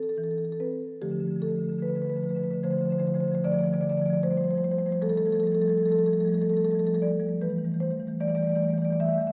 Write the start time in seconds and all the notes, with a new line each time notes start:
Already playing: C4
0.03 A4
0.09 A4
0.17 E3 A4
0.23 A4
0.31 A4
0.38 A4
0.45 A4
0.52 A4
0.60 C4 B4
1.01 D3 F3 A3 G4
1.08 D3 F3 A3
1.17 D3 F3 A3
1.25 F3 A3
1.31 D3 A3
1.36 D3 F3 A3
1.42 F3 A4
1.48 D3 A3
1.52 F3
1.56 D3 A3
1.61 F3 A3
1.69 D3 F3 A3
1.79 D3 F3 A3 B4
1.87 D3 F3 A3 B4
1.95 D3 F3 A3 B4
2.02 F3 A3 B4
2.07 D3 B4
2.12 D3 F3 A3
2.17 B4
2.21 F3 A3 B4
2.25 D3 A3
2.30 F3 B4
2.35 D3 F3 A3 B4
2.44 D3 A3 B4
2.49 F3 B4
2.53 D3 A3
2.64 D3 F3 A3 C5
2.71 D3 F3 A3 C5
2.78 D3 F3 A3 C5
2.85 F3 C5
2.90 D3 A3 C5
2.98 D3 F3 A3 C5
3.06 D3 F3 A3 C5
3.14 D3 F3 A3 C5
3.20 D3 F3 A3 C5
3.28 F3 C5
3.33 D3 A3 C5
3.44 D3 F3 A3 D5
3.52 D3 F3 A3 D5
3.59 A3 D5
3.63 D3 F3 D5
3.68 A3
3.72 D3 F3 A3 D5
3.81 D3 F3 A3 D5
3.90 D3 F3 A3 D5
3.97 D3 F3 A3 D5
4.06 D3 A3 D5
4.10 F3 D5
4.15 A3
4.23 F3 G3 A3 C5
4.31 F3 G3 A3 C5
4.37 F3 G3 A3 C5
4.44 C5
4.48 F3 G3 A3 C5
4.55 F3 G3 A3 C5
4.64 F3 G3 A3 C5
4.71 F3 G3 A3 C5
4.78 F3 G3 A3 C5
4.86 F3 G3 A3 C5
4.92 F3 C5
5.02 F3 G3 A3 A4
5.09 F3 G3 A3 A4
5.17 F3 G3 A3 A4
5.25 F3 G3 A3 A4
5.32 F3 G3 A3 A4
5.40 F3 G3 A4
5.45 A3 A4
5.52 F3 G3 A3 A4
5.60 F3 G3 A3 A4
5.68 F3 G3 A3 A4
5.75 F3 G3 A4
5.80 F3 A3
5.85 G3 A3 A4
5.91 F3 A4
5.96 F3 G3 A3 A4
6.05 F3 G3 A3 A4
6.13 G3 A4
6.17 F3 G3 A3 A4
6.25 F3 A3 A4
6.29 F3 G3
6.33 A3 A4
6.38 F3 G3 A4
6.42 G3 A3
6.48 F3 A3 A4
6.54 F3 G3 A4
6.59 G3 A3
6.65 F3 A3 A4
6.71 G3 A4
6.75 F3 G3 A3
6.80 A4
6.84 F3 G3 A3 A4
6.94 F3 G3 A3 A4
7.02 F3 G3 A3 D5
7.11 F3 G3 A3
7.19 F3 G3 A3
7.27 F3 G3 A3
7.41 E3 G3 A3 B4
7.49 E3 G3 A3
7.56 E3 G3 A3
7.64 E3 G3 A3
7.72 E3 G3 A3
7.80 E3 G3 A3 C5
7.89 E3 G3 A3
7.98 E3 G3 A3
8.07 E3 G3 A3
8.21 E3 G3 A3 D5
8.28 E3 G3 A3 D5
8.35 E3 G3 A3 D5
8.43 G3 A3 D5
8.47 E3 D5
8.52 E3 G3 A3
8.56 G3 D5
8.61 E3 A3 D5
8.68 G3 A3 D5
8.73 E3 G3
8.78 A3 D5
8.82 E3 G3 D5
8.88 E3 A3
8.93 D5
9.00 E3 G3 A3 E5
9.06 E3 G3 A3 E5
9.13 A3 E5
9.18 E3 E5
9.22 A3
9.26 E3 E5